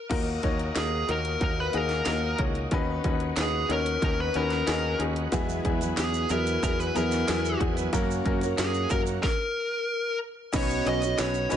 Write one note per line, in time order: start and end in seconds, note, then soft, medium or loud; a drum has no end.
0.09 0.37 D#2 medium
0.09 1.04 A#2 medium
0.09 5.28 D#3 medium
0.09 0.38 A#3 medium
0.09 0.38 D#4 medium
0.09 2.69 D#4 medium
0.09 0.38 F#4 medium
0.09 2.69 F#4 medium
0.09 2.69 A#4 medium
0.09 0.39 A#4 loud
0.09 kick medium
0.09 closed hi-hat medium
0.09 crash medium
0.43 0.70 D#2 medium
0.43 0.71 A#3 medium
0.43 0.71 D#4 medium
0.43 0.71 F#4 medium
0.43 0.71 C#5 medium
0.43 kick medium
0.43 closed hi-hat medium
0.59 closed hi-hat soft
0.75 1.03 D#2 medium
0.75 1.03 A#3 medium
0.75 1.03 D#4 medium
0.75 1.04 F#4 medium
0.75 1.10 G#4 medium
0.75 1.04 A#4 medium
0.75 snare loud
0.75 clap medium
0.75 closed hi-hat medium
1.08 1.35 D#2 medium
1.08 1.36 A#3 medium
1.08 1.36 D#4 medium
1.08 1.36 F#4 medium
1.08 1.36 A#4 medium
1.08 1.43 A#4 medium
1.08 closed hi-hat medium
1.25 closed hi-hat medium
1.40 1.68 D#2 medium
1.40 1.68 A#3 medium
1.40 1.69 D#4 medium
1.40 1.69 F#4 medium
1.40 1.69 A#4 medium
1.40 1.60 A#4 medium
1.40 kick medium
1.40 closed hi-hat medium
1.60 1.77 B4 medium
1.73 2.01 D#2 medium
1.73 2.01 A#3 medium
1.73 2.01 D#4 medium
1.73 2.01 F#4 medium
1.73 2.02 G#4 medium
1.73 closed hi-hat medium
1.77 2.41 A#4 medium
1.89 snare soft
1.89 closed hi-hat soft
2.05 2.33 D#2 medium
2.05 2.34 A#3 medium
2.05 2.34 D#4 medium
2.05 2.34 F#4 medium
2.05 2.34 A#4 medium
2.05 snare medium
2.05 clap medium
2.05 closed hi-hat medium
2.39 2.66 C#2 medium
2.39 2.67 A#3 medium
2.39 2.67 D#4 medium
2.39 2.67 F#4 medium
2.39 2.67 C#5 medium
2.39 kick medium
2.39 closed hi-hat medium
2.55 closed hi-hat soft
2.71 2.98 D#2 medium
2.71 3.66 D#3 medium
2.71 7.89 B3 medium
2.71 5.29 C#4 medium
2.71 3.00 C#4 medium
2.71 3.00 D#4 loud
2.71 9.19 F#4 medium
2.71 3.00 F#4 medium
2.71 3.00 B4 loud
2.71 kick loud
2.71 closed hi-hat medium
3.04 3.31 D#2 medium
3.04 3.32 C#4 medium
3.04 3.32 D#4 medium
3.04 3.32 F#4 medium
3.04 3.33 B4 medium
3.04 kick medium
3.04 closed hi-hat medium
3.20 closed hi-hat soft
3.37 3.63 D#2 medium
3.37 3.64 C#4 medium
3.37 3.65 D#4 medium
3.37 3.65 F#4 medium
3.37 3.65 B4 medium
3.37 snare loud
3.37 clap medium
3.37 closed hi-hat medium
3.41 3.72 G#4 medium
3.69 3.96 D#2 medium
3.69 3.97 C#4 medium
3.69 3.97 D#4 medium
3.69 3.97 F#4 medium
3.69 4.03 A#4 medium
3.69 3.98 C#5 medium
3.69 closed hi-hat medium
3.86 closed hi-hat medium
4.02 4.29 D#2 loud
4.02 4.30 C#4 medium
4.02 4.30 D#4 medium
4.02 4.30 F#4 medium
4.02 4.30 A#4 medium
4.02 4.20 A#4 medium
4.02 kick medium
4.02 closed hi-hat medium
4.20 4.36 B4 loud
4.34 4.62 D#2 medium
4.34 4.63 C#4 medium
4.34 4.63 D#4 medium
4.34 4.63 F#4 medium
4.34 5.00 A#4 medium
4.34 4.63 B4 loud
4.34 closed hi-hat medium
4.50 snare soft
4.50 closed hi-hat soft
4.67 4.94 D#2 medium
4.67 4.95 C#4 medium
4.67 4.95 D#4 medium
4.67 4.95 F#4 medium
4.67 4.95 G#4 loud
4.67 snare loud
4.67 clap medium
4.67 closed hi-hat medium
4.99 5.26 D#2 medium
4.99 5.27 C#4 medium
4.99 5.27 D#4 medium
4.99 5.28 F#4 medium
4.99 5.28 G#4 medium
4.99 closed hi-hat medium
5.16 closed hi-hat soft
5.32 5.59 E2 loud
5.32 6.26 B2 medium
5.32 7.90 E3 medium
5.32 5.81 E3 medium
5.32 5.81 F#3 medium
5.32 5.81 G#3 medium
5.32 5.60 B3 loud
5.32 5.82 B3 medium
5.32 5.60 E4 medium
5.32 5.60 F#4 loud
5.32 7.91 G#4 medium
5.32 5.61 G#4 loud
5.32 5.81 B4 medium
5.32 5.79 E5 medium
5.32 kick loud
5.32 closed hi-hat medium
5.32 shaker medium
5.49 shaker soft
5.65 5.92 E2 medium
5.65 5.93 B3 medium
5.65 5.93 E4 medium
5.65 5.93 F#4 medium
5.65 5.93 G#4 medium
5.65 kick medium
5.65 closed hi-hat medium
5.81 6.28 F#3 soft
5.81 6.29 B3 soft
5.81 6.30 B4 soft
5.81 6.30 E5 soft
5.81 closed hi-hat soft
5.81 shaker medium
5.97 6.25 E2 medium
5.97 6.26 B3 medium
5.97 6.26 E4 medium
5.97 6.26 F#4 medium
5.97 6.31 G#4 medium
5.97 6.26 G#4 medium
5.97 snare loud
5.97 clap medium
5.97 closed hi-hat medium
5.97 shaker medium
6.14 shaker soft
6.29 6.57 E2 medium
6.29 6.94 F#3 medium
6.29 6.95 B3 medium
6.29 6.58 B3 medium
6.29 6.58 E4 medium
6.29 6.59 F#4 medium
6.29 6.59 G#4 medium
6.29 6.63 A#4 medium
6.29 6.96 B4 medium
6.29 6.96 E5 medium
6.29 closed hi-hat medium
6.29 shaker soft
6.47 closed hi-hat medium
6.47 shaker soft
6.63 6.89 E2 loud
6.63 6.91 B3 medium
6.63 6.91 E4 medium
6.63 6.91 F#4 medium
6.63 6.92 G#4 medium
6.63 6.80 A#4 medium
6.63 kick medium
6.63 closed hi-hat medium
6.63 shaker medium
6.80 6.96 B4 medium
6.80 shaker soft
6.94 7.23 E2 medium
6.94 7.26 F#3 medium
6.94 7.23 B3 medium
6.94 7.27 B3 medium
6.94 7.23 E4 medium
6.94 7.23 F#4 medium
6.94 7.23 G#4 loud
6.94 7.57 A#4 medium
6.94 7.29 B4 medium
6.94 7.29 E5 medium
6.94 closed hi-hat medium
6.94 shaker soft
7.12 snare soft
7.12 closed hi-hat soft
7.12 shaker soft
7.28 7.55 E2 medium
7.28 7.77 F#3 medium
7.28 7.56 B3 medium
7.28 7.77 B3 medium
7.28 7.56 E4 medium
7.28 7.56 F#4 medium
7.28 7.56 G#4 loud
7.28 7.77 B4 medium
7.28 7.75 E5 medium
7.28 snare loud
7.28 clap medium
7.28 closed hi-hat medium
7.28 shaker medium
7.45 shaker soft
7.59 7.87 E2 medium
7.59 7.88 B3 medium
7.59 7.88 E4 medium
7.59 7.88 F#4 medium
7.59 7.89 G#4 medium
7.59 kick medium
7.59 closed hi-hat medium
7.77 7.92 F#3 soft
7.77 7.93 B3 medium
7.77 7.94 B4 medium
7.77 7.93 E5 medium
7.77 closed hi-hat soft
7.77 shaker soft
7.93 8.20 F#2 medium
7.93 8.87 C#3 medium
7.93 8.42 F#3 medium
7.93 8.21 A#3 loud
7.93 9.23 A#3 medium
7.93 8.21 C#4 loud
7.93 9.23 C#4 medium
7.93 8.42 F#4 medium
7.93 8.21 F#4 medium
7.93 8.21 A#4 loud
7.93 8.42 A#4 medium
7.93 8.41 C#5 medium
7.93 kick loud
7.93 closed hi-hat medium
7.93 shaker medium
8.11 shaker soft
8.25 8.52 F#2 medium
8.25 8.53 A#3 medium
8.25 8.53 C#4 medium
8.25 8.54 F#4 medium
8.25 8.54 A#4 medium
8.25 kick medium
8.25 closed hi-hat medium
8.41 8.91 F#4 soft
8.41 8.91 A#4 soft
8.41 8.91 C#5 medium
8.41 closed hi-hat medium
8.41 shaker medium
8.56 8.85 F#2 medium
8.56 8.85 A#3 medium
8.56 8.85 C#4 medium
8.56 8.86 F#4 medium
8.56 8.90 G#4 medium
8.56 8.86 A#4 medium
8.56 snare loud
8.56 clap medium
8.56 closed hi-hat medium
8.56 shaker medium
8.74 closed hi-hat soft
8.74 shaker soft
8.90 9.18 F#2 medium
8.90 9.24 F#3 medium
8.90 9.19 A#3 medium
8.90 9.19 C#4 medium
8.90 9.19 F#4 medium
8.90 9.24 F#4 medium
8.90 9.00 A#4 medium
8.90 9.19 A#4 medium
8.90 9.24 A#4 medium
8.90 9.25 C#5 medium
8.90 kick medium
8.90 closed hi-hat medium
8.90 shaker soft
9.06 closed hi-hat medium
9.06 shaker soft
9.23 10.17 A#4 medium
9.23 kick loud
9.23 snare medium
10.52 10.80 B1 loud
10.52 11.02 B3 medium
10.52 11.57 B3 medium
10.52 10.81 C#4 medium
10.52 11.57 C#4 medium
10.52 10.81 D#4 medium
10.52 11.02 D#4 medium
10.52 11.57 D#4 medium
10.52 10.82 F#4 medium
10.52 11.03 F#4 medium
10.52 10.82 B4 medium
10.52 11.01 C#5 medium
10.52 10.85 C#5 medium
10.52 kick loud
10.52 closed hi-hat medium
10.52 crash medium
10.52 shaker medium
10.70 shaker soft
10.86 11.13 B1 medium
10.86 11.14 C#4 medium
10.86 11.14 D#4 medium
10.86 11.15 F#4 medium
10.86 11.15 C#5 medium
10.86 11.19 D#5 medium
10.86 closed hi-hat medium
11.02 11.52 D#4 medium
11.02 11.51 F#4 soft
11.02 11.51 C#5 medium
11.02 closed hi-hat soft
11.02 shaker medium
11.18 11.46 B1 loud
11.18 11.46 C#4 medium
11.18 11.46 D#4 medium
11.18 11.47 F#4 medium
11.18 11.47 B4 medium
11.18 11.50 C#5 medium
11.18 snare loud
11.18 clap medium
11.18 closed hi-hat medium
11.18 shaker medium
11.34 shaker soft
11.49 11.57 B1 medium
11.49 11.57 B3 medium
11.49 11.57 C#4 medium
11.49 11.57 D#4 medium
11.49 11.57 F#4 medium
11.49 11.57 B4 medium
11.49 11.57 C#5 medium
11.49 closed hi-hat medium
11.49 shaker medium
11.54 11.57 C#5 medium